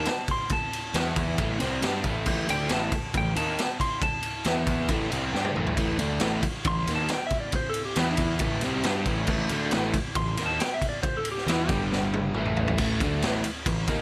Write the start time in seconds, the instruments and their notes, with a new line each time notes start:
Already playing: electric slide guitar A5
0.05 snare, ride
0.28 electric slide guitar C6, kick, ride
0.49 electric slide guitar A5, muted picked electric bass stroke, muted overdriven electric guitar stroke, kick, ride
0.73 ride
0.94 picked electric bass E2, overdriven electric guitar E3 B3 E4, snare, ride
1.16 kick, ride
1.38 picked electric bass A1, overdriven electric guitar A2 E3 A3, kick, ride
1.59 picked electric bass C2, overdriven electric guitar C3 G3 C4, snare, ride
1.82 picked electric bass G2, overdriven electric guitar G3 D4 G4, snare, ride
2.04 picked electric bass A1, overdriven electric guitar A2 E3 A3, kick, ride
2.26 picked electric bass A1, overdriven electric guitar A2 E3 A3, kick, crash
2.48 picked electric bass D2, overdriven electric guitar D3 A3 D4, electric slide guitar G5, ride
2.69 picked electric bass A1, overdriven electric guitar A2 E3 A3, electric slide guitar A5, snare, ride
2.92 muted picked electric bass stroke, muted overdriven electric guitar stroke, kick, ride
3.14 picked electric bass A1, overdriven electric guitar A2 E3, electric slide guitar G5, kick, ride
3.36 picked electric bass D#2, overdriven electric guitar D#3 A#3 D#4, electric slide guitar A5, ride
3.58 snare, ride
3.80 electric slide guitar C6, kick, ride
4.02 electric slide guitar A5, muted picked electric bass stroke, muted overdriven electric guitar stroke, kick, ride
4.23 ride
4.44 picked electric bass E2, overdriven electric guitar E3 B3 E4, snare, ride
4.67 kick, ride
4.88 picked electric bass A1, overdriven electric guitar A2 E3 A3, kick, ride
5.11 picked electric bass C2, overdriven electric guitar C3 G3 C4, ride
5.32 picked electric bass G2, overdriven electric guitar G3 D4 G4, snare
5.45 high tom
5.54 picked electric bass A1, overdriven electric guitar A2 E3 A3, mid tom
5.67 floor tom
5.77 picked electric bass A1, overdriven electric guitar A2 E3 A3, kick, ride, crash
5.98 picked electric bass D2, overdriven electric guitar D3 A3 D4, ride
6.20 picked electric bass A1, overdriven electric guitar A2 E3 A3, snare, ride
6.43 muted picked electric bass stroke, muted overdriven electric guitar stroke, kick, ride
6.65 picked electric bass A1, overdriven electric guitar A2 E3, electric slide guitar C6, kick, ride
6.87 picked electric bass D#2, overdriven electric guitar D#3 A#3 D#4, snare, ride
6.95 electric slide guitar A5
7.08 snare, ride
7.13 electric slide guitar G5
7.27 electric slide guitar E5, ride
7.31 kick
7.40 electric slide guitar D5
7.52 electric slide guitar C5, muted picked electric bass stroke, muted overdriven electric guitar stroke, kick, ride
7.70 electric slide guitar A4
7.74 ride
7.85 electric slide guitar G4
7.96 picked electric bass E2, overdriven electric guitar E3 B3 E4, electric slide guitar E4, snare, ride
8.11 electric slide guitar E4
8.17 kick, ride
8.39 picked electric bass A1, overdriven electric guitar A2 E3 A3, kick, ride
8.61 picked electric bass C2, overdriven electric guitar C3 G3 C4, snare, ride
8.83 picked electric bass G2, overdriven electric guitar G3 D4 G4, snare, ride
9.06 picked electric bass A1, overdriven electric guitar A2 E3 A3, kick, ride
9.27 picked electric bass A1, overdriven electric guitar A2 E3 A3, kick, crash
9.49 picked electric bass D2, overdriven electric guitar D3 A3 D4, ride
9.71 picked electric bass A1, overdriven electric guitar A2 E3 A3, snare, ride
9.94 muted picked electric bass stroke, muted overdriven electric guitar stroke, kick, ride
10.15 picked electric bass A1, overdriven electric guitar A2 E3, electric slide guitar C6, kick, ride
10.37 picked electric bass D#2, overdriven electric guitar D#3 A#3 D#4, snare, ride
10.46 electric slide guitar A5
10.60 electric slide guitar G5, snare, ride
10.74 electric slide guitar E5
10.82 kick, ride
10.89 electric slide guitar D5
11.03 electric slide guitar C5, muted picked electric bass stroke, muted overdriven electric guitar stroke, kick, ride
11.17 electric slide guitar A4
11.25 ride
11.32 electric slide guitar G4
11.38 snare
11.46 picked electric bass E2, overdriven electric guitar E3 B3 E4, electric slide guitar E4, snare, ride
11.61 electric slide guitar G4
11.69 picked electric bass G1, overdriven electric guitar G2 D3 G3, kick, ride
11.92 snare
12.14 high tom
12.34 picked electric bass A1, overdriven electric guitar A2 E3 A3, mid tom
12.46 mid tom
12.57 floor tom
12.68 floor tom
12.78 picked electric bass A1, overdriven electric guitar A2 E3 A3, kick, crash
13.00 picked electric bass D2, overdriven electric guitar D3 A3 D4, kick, ride
13.22 picked electric bass A1, overdriven electric guitar A2 E3 A3, snare, ride
13.44 muted picked electric bass stroke, muted overdriven electric guitar stroke, ride
13.66 picked electric bass A1, overdriven electric guitar A2 E3, kick, ride
13.88 picked electric bass D#2, overdriven electric guitar D#3 A#3 D#4, kick, ride